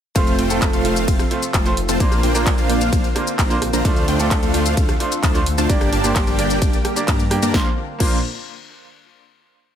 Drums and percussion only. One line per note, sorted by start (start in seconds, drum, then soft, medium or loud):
0.16 kick loud
0.16 closed hi-hat medium
0.16 ride medium
0.16 shaker medium
0.27 closed hi-hat soft
0.27 shaker soft
0.39 open hi-hat loud
0.50 closed hi-hat medium
0.50 shaker medium
0.62 kick loud
0.62 clap loud
0.62 closed hi-hat medium
0.62 ride medium
0.62 shaker medium
0.73 closed hi-hat soft
0.73 shaker soft
0.85 open hi-hat loud
0.96 closed hi-hat medium
0.96 shaker medium
1.08 kick loud
1.08 closed hi-hat medium
1.08 ride medium
1.08 shaker medium
1.19 cross-stick medium
1.19 closed hi-hat soft
1.19 shaker soft
1.31 open hi-hat loud
1.43 closed hi-hat medium
1.43 shaker medium
1.54 kick loud
1.54 clap loud
1.54 closed hi-hat medium
1.54 ride medium
1.54 shaker medium
1.66 closed hi-hat soft
1.66 shaker soft
1.77 open hi-hat loud
1.89 closed hi-hat medium
1.89 shaker medium
2.00 kick loud
2.00 closed hi-hat medium
2.00 ride medium
2.00 shaker medium
2.12 cross-stick medium
2.12 closed hi-hat soft
2.12 shaker soft
2.23 open hi-hat loud
2.35 closed hi-hat medium
2.35 shaker medium
2.46 kick loud
2.46 clap loud
2.46 closed hi-hat medium
2.46 ride medium
2.46 shaker medium
2.58 closed hi-hat soft
2.58 shaker soft
2.70 open hi-hat loud
2.81 closed hi-hat medium
2.81 shaker medium
2.93 kick loud
2.93 closed hi-hat medium
2.93 ride medium
2.93 shaker medium
3.04 closed hi-hat soft
3.04 shaker soft
3.16 cross-stick medium
3.16 open hi-hat loud
3.27 closed hi-hat medium
3.27 shaker medium
3.39 kick loud
3.39 clap loud
3.39 closed hi-hat medium
3.39 ride medium
3.39 shaker medium
3.50 closed hi-hat soft
3.50 shaker soft
3.62 cross-stick medium
3.62 open hi-hat loud
3.73 closed hi-hat medium
3.73 shaker medium
3.85 kick loud
3.85 closed hi-hat medium
3.85 ride medium
3.85 shaker medium
3.97 closed hi-hat soft
3.97 shaker soft
4.08 open hi-hat loud
4.20 closed hi-hat medium
4.20 shaker medium
4.31 kick loud
4.31 clap loud
4.31 closed hi-hat medium
4.31 ride medium
4.31 shaker medium
4.43 closed hi-hat soft
4.43 shaker soft
4.54 open hi-hat loud
4.66 closed hi-hat medium
4.66 shaker medium
4.77 kick loud
4.77 closed hi-hat medium
4.77 ride medium
4.77 shaker medium
4.89 cross-stick medium
4.89 closed hi-hat soft
4.89 shaker soft
5.00 open hi-hat loud
5.12 closed hi-hat medium
5.12 shaker medium
5.23 kick loud
5.23 clap loud
5.23 closed hi-hat medium
5.23 ride medium
5.23 shaker medium
5.35 closed hi-hat soft
5.35 shaker soft
5.46 open hi-hat loud
5.58 closed hi-hat medium
5.58 shaker medium
5.70 kick loud
5.70 closed hi-hat medium
5.70 ride medium
5.70 shaker medium
5.81 cross-stick medium
5.81 closed hi-hat soft
5.81 shaker soft
5.93 open hi-hat loud
6.04 closed hi-hat medium
6.04 shaker medium
6.16 kick loud
6.16 clap loud
6.16 closed hi-hat medium
6.16 ride medium
6.16 shaker medium
6.27 closed hi-hat soft
6.27 shaker soft
6.39 open hi-hat loud
6.50 closed hi-hat medium
6.50 shaker medium
6.62 kick loud
6.62 closed hi-hat medium
6.62 ride medium
6.62 shaker medium
6.73 closed hi-hat soft
6.73 shaker soft
6.85 cross-stick medium
6.85 open hi-hat loud
6.96 closed hi-hat medium
6.96 shaker medium
7.08 kick loud
7.08 clap loud
7.08 closed hi-hat medium
7.08 ride medium
7.08 shaker medium
7.19 closed hi-hat soft
7.19 shaker soft
7.31 cross-stick medium
7.31 open hi-hat loud
7.43 closed hi-hat medium
7.43 shaker medium
7.54 kick loud
7.54 snare medium
8.00 kick loud
8.00 crash medium